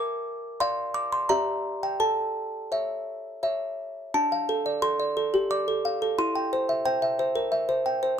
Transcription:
Already playing: A#4 D6
0.60 D5 F5 C6
0.94 D6
1.12 C6
1.29 G4 D5 E5 A#5
1.83 G5
2.00 A4 A5
2.72 C#5 E5
3.43 C#5 E5
4.14 D4 A5
4.32 F5
4.49 A4
4.66 D5
4.82 A4 C6
5.00 D5
5.17 A4
5.34 G4
5.51 D5 D6
5.68 A4
5.85 F5
6.02 A4
6.19 E4 C6
6.35 G5
6.53 C5
6.69 E5
6.86 C5 G5
7.02 E5
7.19 C5
7.35 A#4
7.52 E5
7.69 C5
7.86 G5
8.03 C5

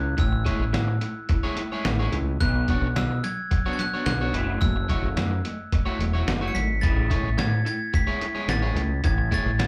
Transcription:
Already playing: C#2 A3 E4 F#6
0.17 A1 A3 E4 E6, kick, closed hi-hat
0.32 muted clean electric guitar stroke
0.45 G#3 A3 E4 G#4 C#5, kick, closed hi-hat
0.59 A1
0.73 A2 A3 E4, muted clean electric guitar stroke, snare, closed hi-hat
0.88 muted clean electric guitar stroke
1.01 A3 E4, closed hi-hat
1.29 A3 E4, muted clean electric guitar stroke, kick, closed hi-hat
1.43 G#3 E4 G#4 C#5
1.56 A3 E4, closed hi-hat
1.72 G#3 E4 G#4 C#5
1.85 A1 A3 E4, snare, closed hi-hat
1.99 G#3 E4 G#4 C#5
2.12 C#2 A3 E4, closed hi-hat
2.41 B1 B2 F#3 B3 F#6, kick, closed hi-hat
2.56 muted clean electric guitar stroke
2.68 B2 F#3 B3 D4 F#4 C#5, kick, closed hi-hat
2.82 B1
2.95 B2 F#3 E6, muted clean electric guitar stroke, snare, closed hi-hat
3.11 muted clean electric guitar stroke
3.24 B2 F#3 G#6, closed hi-hat
3.51 B2 F#3, muted clean electric guitar stroke, kick, closed hi-hat
3.66 B3 D4 F#4 C#5
3.73 G#6
3.79 B2 F#3 F#6, closed hi-hat
3.94 B3 D4 F#4 C#5
4.06 B1 B2 F#3 F#6, snare, closed hi-hat
4.21 B3 D4 F#4 C#5
4.33 F#1 F#3 A3 E4, closed hi-hat
4.61 F#1 F#3 A3 E6, kick, closed hi-hat
4.76 muted clean electric guitar stroke
4.89 F#3 A3 E4 F#4 C#5, kick, closed hi-hat
5.02 F#1
5.16 F#2 F#3 A3, muted clean electric guitar stroke, snare, closed hi-hat
5.31 muted clean electric guitar stroke
5.45 F#3 A3, closed hi-hat
5.72 F#3 A3, muted clean electric guitar stroke, kick, closed hi-hat
5.86 A3 E4 F#4 C#5
5.99 E1 F#3 A3, closed hi-hat
6.13 A3 E4 F#4 C#5
6.26 F#1 F#3 A3, snare, closed hi-hat
6.41 A3 E4 F#4 C#5
6.48 C#7
6.55 G#1 F#3 A3 B6, closed hi-hat
6.81 A1 A3 E4 G#4 A6, kick, closed hi-hat
6.97 muted clean electric guitar stroke
7.10 G#3 A3 E4 G#4 C#5, kick, closed hi-hat
7.23 A1
7.37 A2 A3 E4 G#6, muted clean electric guitar stroke, snare, closed hi-hat
7.51 muted clean electric guitar stroke
7.65 A3 E4 G#6, closed hi-hat
7.93 A3 E4 B6, muted clean electric guitar stroke, kick, closed hi-hat
8.07 G#3 E4 G#4 C#5
8.21 A3 E4, closed hi-hat
8.35 G#3 E4 G#4 C#5
8.48 A1 A3 E4 A6, snare, closed hi-hat
8.62 G#3 E4 G#4 C#5
8.75 C#2 A3 E4, closed hi-hat
9.04 A1 A3 E4 G#6, kick, closed hi-hat
9.18 muted clean electric guitar stroke
9.31 G#3 A3 E4 G#4 C#5 A6, kick, closed hi-hat
9.46 A1
9.59 A2 A3 E4, muted clean electric guitar stroke, snare, closed hi-hat

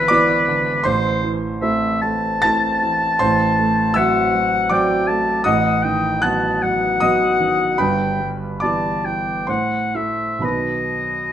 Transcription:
Already playing: G#1 G#2 D3 E3 B3 E4 B4 D5 E5 D6 E6
0.08 E3 B3 E4 D5 D6
0.48 D3
0.84 A1 A2 C5 C6
1.23 E3
1.61 A3 C4 E4 E5
2.01 A3 A5
2.42 A3 C4 E4 A5 A6
2.82 E3
3.19 A1 A2 C5 C6
3.59 A3
3.94 F#3 C4 F#4 E5 F#5 E6
4.35 F#3
4.70 F#3 C4 F#4 D5 G5 D6
5.07 A3 A5
5.44 A1 A2 D#5 F#5 D#6
5.83 D#3 G5
6.22 F#3 B3 F#4 F#5 A5 F#6
6.62 F#3 F#5
7.00 F#3 B3 F#4 D#5 D#6
7.40 D#3
7.78 G1 G2 B4 G5 B5
8.20 G3
8.60 E3 B3 G4 D5 A5 D6
9.04 E3 G5
9.47 A2 C5 F#5 C6
9.95 A3 E4 E5
10.39 B1 B2 D#3 F#3 B3 B4 B5
10.44 D#5

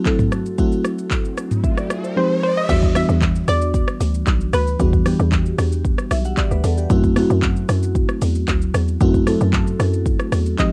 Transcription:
Already playing: F#3 A3 C4 E4 F#4
0.06 F#3 A3 C4 E4 A4, kick, clap, shaker
0.19 kick, mid tom, shaker
0.32 cross-stick, shaker
0.46 shaker
0.58 F#3 A3 C4 E4 F#4, kick, riser, shaker
0.72 shaker
0.85 cross-stick, shaker
0.98 shaker
1.11 kick, clap, shaker
1.25 shaker
1.38 cross-stick, shaker
1.51 mid tom, shaker
1.64 E5, kick, shaker
1.77 D5, cross-stick, shaker
1.90 cross-stick, shaker
2.04 C5, shaker
2.16 F3 G#3 C4 D#4 G4 C5
2.43 C5
2.57 D#5
2.69 E2 E3 G3 B3 D4 F#4 E5, kick, crash, shaker
2.83 kick, shaker
2.95 E3 G3 B3 D4 F#4 E5, cross-stick, open hi-hat, shaker
3.09 E2, shaker
3.21 kick, clap, shaker
3.36 shaker
3.48 E2 D5, cross-stick, open hi-hat, shaker
3.62 shaker
3.74 kick, shaker
3.88 cross-stick, shaker
4.00 D2, open hi-hat, shaker
4.14 shaker
4.27 B1, kick, clap, shaker
4.41 shaker
4.53 D2 B4, cross-stick, open hi-hat, shaker
4.67 shaker
4.79 E2 E3 G3 B3 D4 F#4, kick, shaker
4.93 kick, shaker
5.06 E3 G3 B3 D4 G4, cross-stick, open hi-hat, shaker
5.20 E2, shaker
5.32 kick, clap, shaker
5.46 shaker
5.58 E2, cross-stick, open hi-hat, shaker
5.72 shaker
5.85 kick, shaker
5.98 cross-stick, shaker
6.11 B1 E5, cross-stick, open hi-hat, shaker
6.25 F#5, shaker
6.37 D5, kick, clap, shaker
6.51 D2 B4, shaker
6.64 E2 A4, open hi-hat, shaker
6.78 G4, shaker
6.90 F#2 F#3 A3 C4 E4 F#4, kick, shaker
7.04 kick, shaker
7.16 F#3 A3 C4 E4 F#4, cross-stick, open hi-hat, shaker
7.30 F#2, shaker
7.42 kick, clap, shaker
7.56 shaker
7.69 F#2, cross-stick, open hi-hat, shaker
7.83 shaker
7.95 kick, shaker
8.09 cross-stick, shaker
8.22 E2, open hi-hat, shaker
8.35 shaker
8.48 D2, kick, clap, shaker
8.62 shaker
8.74 E2, cross-stick, open hi-hat, shaker
8.88 shaker
9.01 F#2 F#3 A3 C4 E4 F#4, kick, shaker
9.14 kick, shaker
9.27 F#3 A3 C4 E4 A4, cross-stick, open hi-hat, shaker
9.41 F#2, shaker
9.53 kick, clap, shaker
9.67 shaker
9.80 F#2, cross-stick, open hi-hat, shaker
9.93 shaker
10.06 kick, shaker
10.19 cross-stick, shaker
10.32 E2, cross-stick, open hi-hat, shaker
10.46 shaker
10.58 F3 G#3 C4 D#4 G4 D#5, kick, clap, shaker

